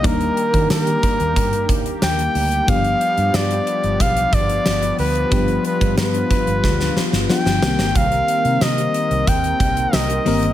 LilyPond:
<<
  \new Staff \with { instrumentName = "Flugelhorn" } { \time 4/4 \key g \phrygian \tempo 4 = 91 bes'4 bes'4. r8 g''4 | f''4 d''4 f''8 d''4 b'8~ | b'8 b'8 b'4. r8 g''4 | f''4 ees''4 g''4 ees''4 | }
  \new Staff \with { instrumentName = "Analog synth pad" } { \time 4/4 \key g \phrygian << { g'1~ | g'1 | f'2.~ f'8 bes'8~ | bes'1 | } \\ { <g bes>1 | <f b>1~ | <f b>2.~ <f b>8 <ees c'>8~ | <ees c'>1 | } >> }
  \new Staff \with { instrumentName = "FM electric piano" } { \time 4/4 \key g \phrygian <g bes d' ees' bes'>1 | <f g b d' g'>1 | <f g b d' g'>2. <f g b d' f'>8 <ees g bes c' g'>8~ | <ees g bes c' g'>2.~ <ees g bes c' g'>8 <ees g bes c' bes'>8 | }
  \new Staff \with { instrumentName = "Fingered electric bass" } { \clef bass \time 4/4 \key g \phrygian ees,8 r16 ees16 ees8 r16 ees,16 g,8 ees,8 ees,8 d,8 | g,,8 r16 g,16 g,8 r16 g,,16 b,,8 g,,8 g,,8 d,8 | g,,8 r16 g,16 g,8 r16 g,,16 d,8 r16 g,,16 r16 g,,16 c,16 g,,16 | c,8 r16 c16 c8 r16 c,16 ees,8 c,8 c,8 g,,8 | }
  \new DrumStaff \with { instrumentName = "Drums" } \drummode { \time 4/4 <hh bd>16 hh16 hh16 <hh bd>16 <sn tamb>16 hh16 <hh bd>16 hh16 <hh bd>16 hh16 <hh bd>16 hh16 <sn tamb>16 hh16 hho16 hh16 | <hh bd>16 hh16 hh16 hh16 <sn tamb>16 hh16 hh16 hh16 <hh bd>16 hh16 <hh bd>16 hh16 <sn tamb>16 hh16 hho16 hh16 | <hh bd>16 hh16 hh16 <hh bd>16 <sn tamb>16 hh16 <hh bd>16 hh16 <bd sn>16 sn16 sn16 sn16 sn16 sn16 sn16 sn16 | <hh bd>16 hh16 hh16 hh16 <sn tamb>16 hh16 hh16 hh16 <hh bd>16 hh16 <hh bd>16 hh16 <sn tamb>16 hh16 hho16 hh16 | }
>>